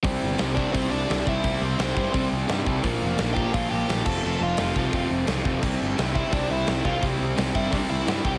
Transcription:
<<
  \new Staff \with { instrumentName = "Lead electric guitar" } { \time 4/4 \key c \mixolydian \tempo 4 = 172 r4. <d' d''>8 <c' c''>8 <d' d''>4 <e' e''>8~ | <e' e''>8 <c' c''>2 r4. | r4. <g' g''>8 <f' f''>8 <g' g''>4 <a' a''>8~ | <a' a''>8 <f' f''>2 r4. |
r4. <e' e''>8 <d' d''>8 <e' e''>4 <f' f''>8 | r4. <e' e''>8 <d' d''>8 <e' e''>4 <g' g''>8 | }
  \new Staff \with { instrumentName = "Distorted electric guitar" } { \clef bass \time 4/4 \key c \mixolydian <c g c' e'>4 <c g c' e'>8 <c g c' e'>8 <c g c' e'>4 <c g c' e'>8 <c g c' e'>8 | <c g c' e'>4 <c g c' e'>8 <c g c' e'>8 <c g c' e'>4 <c g c' e'>8 <c g c' e'>8 | <bes, f bes d'>4 <bes, f bes d'>8 <bes, f bes d'>8 <bes, f bes d'>4 <bes, f bes d'>8 <f, c f a c'>8 | <f, c f a c'>4 <f, c f a c'>8 <f, c f a c'>8 <f, c f a c'>4 <f, c f a c'>8 <f, c f a c'>8 |
<c g c' e'>4 <c g c' e'>8 <c g c' e'>8 <c g c' e'>4 <c g c' e'>8 <c g c' e'>8 | <c g c' e'>4 <c g c' e'>8 <c g c' e'>8 <c g c' e'>4 <c g c' e'>8 <c g c' e'>8 | }
  \new Staff \with { instrumentName = "Overdriven electric guitar" } { \clef bass \time 4/4 \key c \mixolydian <c g c'>4 <c g c'>8 <c g c'>8 <c g c'>4 <c g c'>8 <c g c'>8 | <c g c'>4 <c g c'>8 <c g c'>8 <c g c'>4 <c g c'>8 <c g c'>8 | <bes, f bes>4 <bes, f bes>8 <bes, f bes>8 <bes, f bes>4 <bes, f bes>8 <f, c f>8 | <f, c f>4 <f, c f>8 <f, c f>8 <f, c f>4 <f, c f>8 <f, c f>8 |
<c g c'>4 <c g c'>8 <c g c'>8 <c g c'>4 <c g c'>8 <c g c'>8 | <c g c'>4 <c g c'>8 <c g c'>8 <c g c'>4 <c g c'>8 <c g c'>8 | }
  \new Staff \with { instrumentName = "Picked electric bass" } { \clef bass \time 4/4 \key c \mixolydian c,8 g,,8 c,4 c,8 c,8 c,8 c,8 | c,8 c,8 c,8 g,8 c,8 c,8 g,8 c,8 | bes,,8 f,,8 bes,,4 bes,,8 bes,,8 bes,,8 f,,8 | f,,8 f,,8 f,,8 c,8 f,,8 f,,8 c,8 f,,8 |
c,8 g,,8 c,4 c,8 c,8 c,8 c,8 | c,8 c,8 c,8 g,8 c,8 c,8 g,8 c,8 | }
  \new DrumStaff \with { instrumentName = "Drums" } \drummode { \time 4/4 <hho bd>4 <hho sn>8 bd8 <hho bd>4 <hho sn>8 bd8 | <hho bd>4 <hho sn>8 bd8 <hho bd>4 <hho sn>8 bd8 | <hho bd>4 <hho sn>8 bd8 <hho bd>4 <hho sn>8 <cymc bd>8 | r4 <hho sn>8 bd8 <hho bd>4 <hho sn>8 bd8 |
<cymc bd>4 <hho sn>8 bd8 <hho bd>4 <hho sn>8 bd8 | <hho bd>4 <hho sn>8 bd8 <hho bd>4 <hho sn>8 bd8 | }
>>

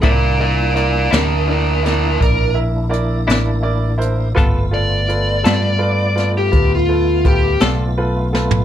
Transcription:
<<
  \new Staff \with { instrumentName = "Lead electric guitar" } { \time 12/8 \key c \major \tempo 4. = 55 <bes' d''>8 <bes' d''>8 <bes' d''>8 <d' bes'>8 <d' bes'>8 <d' bes'>8 bes'8 r2 r8 | r8 d''2~ d''16 g'8 f'8. g'8 r4. | }
  \new Staff \with { instrumentName = "Upright piano" } { \time 12/8 \key c \major <e' bes' d''>8 <e' bes' d''>8 <e' bes' d''>8 <e' bes' d''>8 <e' bes' d''>8 <e' bes' d''>8 <e' bes' d''>8 <e' bes' e''>8 <e' bes' d''>8 <e' bes' d''>8 <e' bes' d''>8 <e' bes' c''>8 | <f' a' b'>8 <f' a' b'>8 <f' a' b'>8 <f' a' b'>8 <f' a' b'>8 <f' a' b'>8 <f' a' b'>8 <f' a' b'>8 <f' a' b'>8 <f' a' d''>8 <f' a' b'>8 <f' a' b'>8 | }
  \new Staff \with { instrumentName = "Clean electric guitar" } { \time 12/8 \key c \major <c bes d' e'>8 r4 <c bes d' e'>8 r2 r8 <c bes d' e'>8 r4 | <g b f' a'>8 r4 <g b f' a'>8 r2 r8 <g b f' a'>8 r4 | }
  \new Staff \with { instrumentName = "Tonewheel organ" } { \time 12/8 \key c \major <bes d' e'>1. | <a b f'>1. | }
  \new Staff \with { instrumentName = "Fretless electric bass" } { \clef bass \time 12/8 \key c \major c,4. d,4. bes,,4. a,,4. | g,,4. g,4. d,4. b,,4. | }
  \new DrumStaff \with { instrumentName = "Drums" } \drummode { \time 12/8 <hh bd>4 hh8 <hh sn>4 <hh sn>8 <hh bd>4 hh8 <hh sn>4 hh8 | <hh bd>4 hh8 <hh sn>4 <hh sn>8 <hh bd>4 <hh bd>8 <hh sn>4 sn16 tomfh16 | }
>>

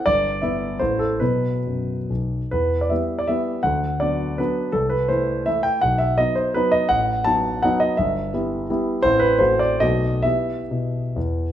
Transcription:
<<
  \new Staff \with { instrumentName = "Grand piano" } { \time 3/4 \key e \minor \tempo 4 = 160 d''4 e''4 c''8 a'8 | b'2 r4 | b'8. d''16 e''8. d''16 e''4 | fis''4 d''4 b'4 |
a'8 b'8 c''4 e''8 g''8 | fis''8 e''8 dis''8 c''8 b'8 dis''8 | fis''4 a''4 fis''8 dis''8 | e''2 r4 |
c''8 b'8 c''8 d''8 dis''4 | e''2 r4 | }
  \new Staff \with { instrumentName = "Grand piano" } { \time 3/4 \key e \minor g,,4 <e b e'>4 <a,, e a e'>4 | <b, fis b>4 fis,4 b,,4 | e,4 <e g b>4 <e g b>4 | d,4 <fis b d'>4 <fis b d'>4 |
c,4 <e a e'>4 <e a e'>4 | b,,4 <fis b dis'>4 <fis b dis'>4 | a,,4 <fis b dis'>4 <fis b dis'>4 | g,,4 <g b e'>4 <g b e'>4 |
<a,, e c' e'>4 <a,, a c' fis'>4 <b,, a b fis'>4 | <e b g'>4 b,4 e,4 | }
>>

